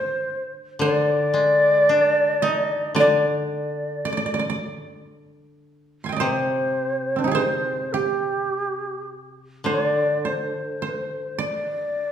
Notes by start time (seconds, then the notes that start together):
Already playing: D3 C5 D5
0.79 D3 C5
0.84 D5
1.09 C#5
1.27 D5
1.34 G#3
1.89 D4
2.42 D#4 D#5
2.95 D3 D5
2.99 D5
4.05 D5
4.13 D5
4.17 D5
4.26 D5
4.34 D5
4.39 D5
4.50 D5
6.04 G#5 C6
6.09 D#5 G5
6.16 C5 D5
6.21 C3 C5
7.16 C4 D4
7.24 D#4 G4
7.31 G#4 C5
7.93 G4
9.64 D3 D5
9.72 D5
10.25 C5
10.82 C5
10.87 C5
11.38 D5